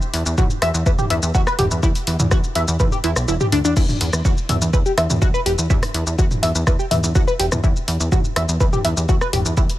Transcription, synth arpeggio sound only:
0.38 0.44 F#4 loud
0.62 0.69 E5 medium
0.86 0.90 B4 loud
0.99 1.05 G4 medium
1.10 1.14 E5 medium
1.34 1.41 F#4 loud
1.47 1.53 B4 loud
1.59 1.65 G4 medium
1.83 1.87 E4 loud
2.31 2.38 F#4 loud
2.56 2.62 E5 medium
2.80 2.84 B4 loud
2.92 2.98 G4 medium
3.04 3.10 E4 medium
3.28 3.35 E4 medium
3.41 3.47 G4 medium
3.52 3.59 D4 loud
3.65 3.74 D4 loud
3.77 3.80 E4 loud
4.25 4.31 F#4 loud
4.49 4.56 E5 medium
4.73 4.77 B4 loud
4.86 4.92 G4 medium
4.98 5.01 E5 medium
5.22 5.28 F#4 loud
5.34 5.40 B4 loud
5.46 5.52 G4 medium
5.70 5.74 E4 loud
6.18 6.25 F#4 loud
6.43 6.49 E5 medium
6.67 6.71 B4 loud
6.79 6.85 G4 medium
6.91 6.95 E5 medium
7.15 7.22 F#4 loud
7.27 7.34 B4 loud
7.39 7.46 G4 medium
7.63 7.67 E4 loud
8.12 8.19 F#4 loud
8.36 8.43 E5 medium
8.60 8.64 B4 loud
8.73 8.79 G4 medium
8.85 8.89 E5 medium
9.09 9.15 F#4 loud
9.21 9.27 B4 loud
9.33 9.40 G4 medium
9.57 9.61 E4 loud

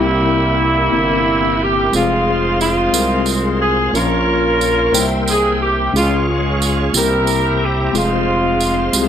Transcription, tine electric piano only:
0.00 0.90 C3 medium
0.00 0.69 A#3 medium
0.00 0.70 C4 medium
0.00 0.70 E4 medium
0.00 0.74 G4 medium
0.91 1.69 A#3 medium
0.91 1.70 C4 medium
0.91 1.70 E4 medium
0.91 1.71 A#4 medium
1.92 2.70 G#3 medium
1.92 2.70 C4 medium
1.92 2.71 F4 medium
1.92 2.71 G#4 medium
2.92 3.00 G3 soft
2.92 3.70 C4 medium
2.92 3.71 F4 medium
2.92 3.71 A#4 medium
2.99 3.73 G#3 medium
3.93 4.90 A#2 medium
3.93 4.70 A#3 medium
3.93 4.71 C#4 medium
3.93 4.71 F4 medium
3.93 4.71 A#4 medium
4.92 5.90 C3 medium
4.92 5.70 A#3 medium
4.92 5.00 D#4 soft
4.92 5.70 C5 medium
4.92 5.71 G5 medium
5.00 5.74 E5 medium
5.93 6.90 C#3 medium
5.93 6.70 G#3 medium
5.93 6.70 C#4 medium
5.93 6.01 E4 medium
5.93 6.71 G#4 medium
6.01 6.74 F4 medium
6.93 7.90 C3 medium
6.93 7.70 A#3 medium
6.93 7.71 C4 medium
6.93 7.71 E4 soft
6.93 7.71 G4 medium
7.93 8.70 G#3 medium
7.93 8.70 C4 medium
7.93 8.71 F4 medium
7.93 8.71 G#4 medium
8.92 9.08 G#3 medium
8.92 9.08 C4 medium
8.92 9.08 F4 medium
8.92 9.01 G4 medium
9.02 9.08 G#4 medium

